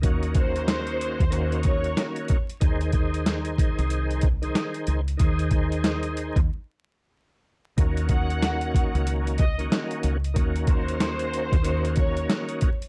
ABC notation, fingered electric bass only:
X:1
M:4/4
L:1/16
Q:"Swing 16ths" 1/4=93
K:Ebdor
V:1 name="Fingered electric bass" clef=bass
E,,6- E,, E,,4- E,, z4 | E,,6- E,, C,,4- C,, z2 D,,2 | E,,6- E,, E,, z8 | E,,6- E,, D,,4- D,, z2 D,,2 |
E,,6- E,, E,,4- E,, z4 |]